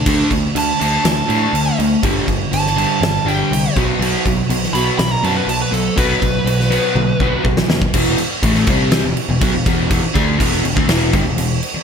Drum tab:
CC |x-x-x-x-x-x-x-x-|x-x-x-x-x-x-x-x-|x-x-x-x-x-x-x-x-|x-x-x-x---------|
SD |--------o-------|-----o--o-------|-----o--o-------|-----o-------oo-|
T1 |----------------|----------------|----------------|--------o-------|
BD |o-o-------------|o-o-----------o-|--o-------------|o-o-------o-o--o|

CC |x-x-x-x-x-x-x-x-|x-x-x-x-x-x-x-x-|
SD |-----o--o-------|-----o--o-------|
T1 |----------------|----------------|
BD |o---o-o-----o-o-|o-o-o--o--o-----|